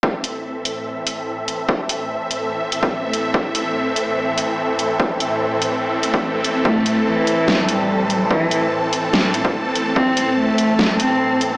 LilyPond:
<<
  \new Staff \with { instrumentName = "Supersaw synth" } { \time 4/4 \key a \minor \tempo 4 = 145 << { e''1~ | e''1~ | e''1~ | e''1 |
a''1~ | a''1~ | a''1 | } \\ { <a, e c' a'>1~ | <a, e c' a'>1~ | <a, e c' a'>1~ | <a, e c' a'>1~ |
<a, e c' a'>1~ | <a, e c' a'>1~ | <a, e c' a'>1 | } >> }
  \new Staff \with { instrumentName = "Cello" } { \time 4/4 \key a \minor r1 | r1 | r1 | r1 |
a8 r8 e4. g4. | e8 r2. r8 | c'8 r8 a4. c'4. | }
  \new DrumStaff \with { instrumentName = "Drums" } \drummode { \time 4/4 bd8 hh8 r8 hh8 r8 hh8 r8 hh8 | bd8 hh8 r8 hh8 r8 hh16 bd16 r8 hh8 | bd8 hh8 r8 hh8 r8 hh8 r8 hh8 | bd8 hh8 r8 hh8 r8 hh16 bd16 r8 hh8 |
bd8 hh8 r8 hh8 sn8 hh8 r8 hh8 | bd8 hh8 r8 hh8 sn8 hh16 bd16 r8 hh8 | bd8 hh8 r8 hh8 sn8 hh8 r8 hh8 | }
>>